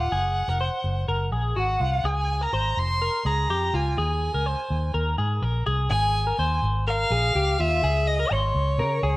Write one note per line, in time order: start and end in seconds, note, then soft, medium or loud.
0.00 0.12 F4 medium
0.00 1.32 F#5 medium
0.12 0.43 F#1 loud
0.12 0.49 G#4 loud
0.48 0.68 F1 medium
0.48 0.60 A#4 medium
0.61 1.06 C5 medium
0.84 1.04 F#1 medium
1.08 1.29 F#1 loud
1.08 1.32 A#4 medium
1.32 1.53 A#1 medium
1.32 1.57 G#4 medium
1.56 1.77 G#1 medium
1.56 1.81 F#4 medium
1.56 2.08 F#5 medium
1.80 2.01 C2 medium
1.80 2.05 F4 medium
2.04 2.45 C#2 loud
2.04 2.41 G#4 loud
2.04 2.44 G#5 medium
2.41 2.53 A#4 medium
2.41 2.80 A#5 medium
2.52 2.73 G#1 medium
2.52 2.99 C5 medium
2.77 3.08 F1 medium
2.77 3.28 C6 loud
3.02 3.25 A#4 medium
3.25 3.46 C#2 loud
3.25 3.50 G#4 medium
3.25 3.77 A#5 loud
3.49 3.70 F2 medium
3.49 3.74 G4 medium
3.73 3.94 C#2 medium
3.73 3.98 F4 medium
3.73 3.98 G#5 medium
3.98 4.28 D#2 loud
3.98 4.32 G#4 loud
3.98 4.91 G#5 medium
4.34 4.54 C#2 medium
4.34 4.46 A#4 medium
4.46 4.91 C5 medium
4.70 4.91 D#2 medium
4.94 5.15 D#2 medium
4.94 5.18 A#4 medium
5.18 5.39 G#2 medium
5.18 5.43 G#4 medium
5.42 5.63 A#1 medium
5.42 5.66 A#4 medium
5.67 5.87 C2 medium
5.67 5.90 G#4 medium
5.90 6.31 G#1 loud
5.90 6.25 G#4 loud
5.90 6.59 G#5 loud
6.27 6.39 A#4 medium
6.39 6.59 D#2 medium
6.39 6.84 C5 medium
6.62 7.03 G#1 medium
6.87 7.11 A#4 medium
6.87 7.61 F5 loud
7.10 7.31 A#1 loud
7.10 7.35 G#4 medium
7.35 7.55 C#2 medium
7.35 7.59 G4 medium
7.59 7.79 D#2 loud
7.59 7.83 F4 medium
7.59 8.09 E5 loud
7.83 8.24 C#2 loud
7.83 8.17 G#4 loud
8.07 8.33 D#5 loud
8.20 8.31 A#4 medium
8.31 8.51 G#1 medium
8.31 9.17 C#5 medium
8.31 8.77 C6 medium
8.54 8.80 C#2 loud
8.78 8.99 C#3 loud
8.78 9.03 A#4 medium
9.03 9.17 C#2 loud
9.03 9.17 G#4 medium